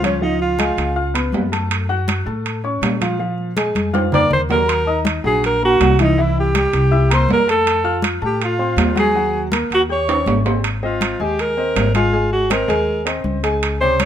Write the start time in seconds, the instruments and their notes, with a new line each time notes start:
Already playing: upright bass C#2
0.02 grand piano F3 F4 F5, alto saxophone C#4, flute C#5, high conga, high timbale
0.22 grand piano F3 F4 F5, alto saxophone D#4, flute D#5, high conga
0.40 alto saxophone F4, flute F5, high conga
0.58 grand piano G#3 G#4 G#5, high conga, high timbale
0.77 upright bass C#2, high conga, high timbale
0.96 grand piano F4 F5 F6, high conga
1.14 grand piano B3 B4 B5, high conga, high timbale
1.32 upright bass F#2, high conga, low timbale
1.52 grand piano A3 A4 A5, high conga, high timbale
1.71 high conga, high timbale
1.89 grand piano F#4 F#5 F#6, high conga
2.08 high conga, high timbale
2.26 upright bass A2, grand piano A3 A4 A5, high conga
2.46 high conga, high timbale
2.64 grand piano C#4 C#5 C#6, high conga
2.81 upright bass A#2, high conga, high timbale, low timbale
3.01 grand piano F3 F4 F5, high conga, high timbale
3.19 grand piano F3 F4 F5, high conga
3.38 high conga
3.56 grand piano G#3 G#4 G#5, high conga, high timbale
3.75 upright bass F2, high conga, high timbale
3.93 grand piano F4 F5 F6, high conga, high timbale
4.12 grand piano A#3 A#4 A#5, alto saxophone D5, flute D6, low conga, high timbale
4.31 upright bass D#2, alto saxophone C5, flute C6, low conga
4.49 grand piano F#3 F#4 F#5, alto saxophone A#4, flute A#5, low conga, low timbale
4.68 flute C6, high conga, high timbale
4.72 flute A#5
4.85 grand piano D#4 D#5 D#6, flute A5, high conga
4.89 flute A#5
5.05 high conga, high timbale
5.24 upright bass A#1, grand piano F#3 F#4 F#5, alto saxophone G#4, flute G#5
5.43 alto saxophone A#4, flute A#5, high conga, high timbale
5.62 grand piano A#3 A#4 A#5, alto saxophone F#4, flute G#5, high conga
5.68 flute F#5
5.80 upright bass C2, high conga, high timbale, low timbale
5.99 grand piano E3 E4 E5, alto saxophone D#4, flute D#5, high conga, high timbale
6.18 grand piano E3 E4 E5, alto saxophone E4, flute E5
6.37 alto saxophone G4, flute G5, high conga
6.54 grand piano G3 G4 G5, high conga, high timbale
6.73 upright bass C2, high conga, high timbale
6.91 grand piano E4 E5 E6, high conga
7.10 grand piano A#3 A#4 A#5, alto saxophone C5, flute C6, high conga, high timbale
7.29 upright bass F2, alto saxophone A#4, flute A#5, high conga, low timbale
7.47 grand piano A3 A4 A5, alto saxophone A4, flute A5, high conga, high timbale
7.65 high conga, high timbale
7.84 grand piano F4 F5 F6, high conga
8.02 high conga, high timbale
8.21 upright bass A2, grand piano A3 A4 A5, flute G5, high conga
8.26 alto saxophone G4
8.40 flute F5, high conga, high timbale
8.45 alto saxophone F4
8.59 grand piano C4 C5 C6, high conga
8.76 upright bass D#2, high conga, high timbale, low timbale
8.95 grand piano F#3 F#4 F#5, flute G#5, high conga, high timbale
8.99 alto saxophone G#4
9.15 grand piano F#3 F#4 F#5, high conga
9.33 high conga
9.51 grand piano A#3 A#4 A#5, high conga, high timbale
9.70 upright bass D#2, alto saxophone F#4, flute F#5, high conga, high timbale
9.89 grand piano G4 G5 G6, alto saxophone C#5, flute C#6, high conga
10.08 grand piano C#4 C#5 C#6, high conga, high timbale
10.26 upright bass G#1, high conga, low timbale
10.46 grand piano C4 C5 C6, high conga, low timbale
10.64 high conga, high timbale
10.83 grand piano C4 C5 D#5, alto saxophone F4, high conga
11.01 high conga, high timbale
11.20 upright bass D#2, grand piano G#3 G#4 G#5, alto saxophone G4, high conga
11.39 alto saxophone A#4, high conga, high timbale
11.57 grand piano C4 C5 D#5, high conga
11.76 upright bass G#1, high conga, high timbale, low timbale
11.94 grand piano G#3 G#4 G#5, alto saxophone F4, high conga, high timbale
12.13 grand piano G#3 G#4 G#5, high conga
12.33 alto saxophone F#4, high conga
12.50 grand piano C4 C5 D#5, alto saxophone A#4, high conga, high timbale
12.68 upright bass D#2, grand piano G#3 G#4 G#5, high conga, high timbale
12.88 high conga
13.05 grand piano C4 C5 D#5, high conga, high timbale
13.24 upright bass C#2, high conga
13.43 grand piano G#3 G#4 G#5, high timbale
13.63 high conga, high timbale
13.81 grand piano C3 C5 C#5, alto saxophone C5, high conga
14.00 alto saxophone C#5, high conga, high timbale